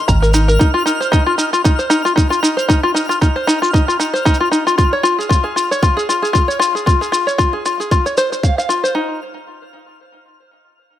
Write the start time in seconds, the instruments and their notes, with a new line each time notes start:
Already playing: synth texture F6
0.08 sub bass G#1, five-string banjo A#5, kick, cabasa
0.22 five-string banjo A#4, cabasa
0.34 five-string banjo D#4, cabasa
0.48 five-string banjo A#4, cabasa
0.59 five-string banjo D#4, kick, cabasa
0.74 five-string banjo F4
0.86 five-string banjo D#4, cabasa
1.00 five-string banjo C5, cabasa
1.12 five-string banjo D#4, kick, cabasa
1.26 five-string banjo F4
1.38 five-string banjo D#4, cabasa
1.53 five-string banjo F4, cabasa
1.64 five-string banjo D#4, kick, cabasa
1.79 five-string banjo C5, cabasa
1.90 five-string banjo D#4, cabasa
2.05 five-string banjo F4, cabasa
2.16 five-string banjo D#4, kick, cabasa
2.30 five-string banjo F4, cabasa
2.43 five-string banjo D#4, cabasa
2.57 five-string banjo C5, cabasa
2.68 five-string banjo D#4, kick, cabasa
2.83 five-string banjo F4
2.94 five-string banjo D#4, cabasa
3.09 five-string banjo F4, cabasa
3.21 five-string banjo D#4, kick, cabasa
3.36 five-string banjo C5
3.47 five-string banjo D#4, cabasa
3.62 five-string banjo F4, cabasa
3.73 five-string banjo D#4, kick, cabasa
3.88 five-string banjo F4, cabasa
3.99 five-string banjo D#4, cabasa
4.14 five-string banjo C5, cabasa
4.25 five-string banjo D#4, kick, cabasa
4.34 cabasa
4.40 five-string banjo F4
4.51 five-string banjo D#4, cabasa
4.67 five-string banjo F4, cabasa
4.78 five-string banjo F4, kick, cabasa
4.93 five-string banjo C#5
5.03 five-string banjo F4, cabasa
5.19 five-string banjo G#4, cabasa
5.29 five-string banjo F4, kick, cabasa
5.44 five-string banjo G#4
5.56 five-string banjo F4, cabasa
5.71 five-string banjo C#5, cabasa
5.83 five-string banjo F4, kick, cabasa
5.97 five-string banjo G#4, cabasa
6.09 five-string banjo F4, cabasa
6.22 five-string banjo G#4, cabasa
6.33 five-string banjo F4, kick, cabasa
6.48 five-string banjo C#5, cabasa
6.59 five-string banjo F4, cabasa
6.75 five-string banjo G#4, cabasa
6.86 five-string banjo F4, kick, cabasa
7.01 five-string banjo G#4, cabasa
7.12 five-string banjo F4, cabasa
7.27 five-string banjo C#5, cabasa
7.38 five-string banjo F4, kick, cabasa
7.53 five-string banjo G#4
7.65 five-string banjo F4, cabasa
7.80 five-string banjo G#4, cabasa
7.91 five-string banjo F4, kick, cabasa
8.06 five-string banjo C#5, cabasa
8.17 five-string banjo C5, cabasa
8.32 five-string banjo C5, cabasa
8.43 five-string banjo F5, kick, cabasa
8.58 five-string banjo F5, cabasa
8.69 five-string banjo F4, cabasa
8.84 five-string banjo C5, cabasa
8.95 five-string banjo D#4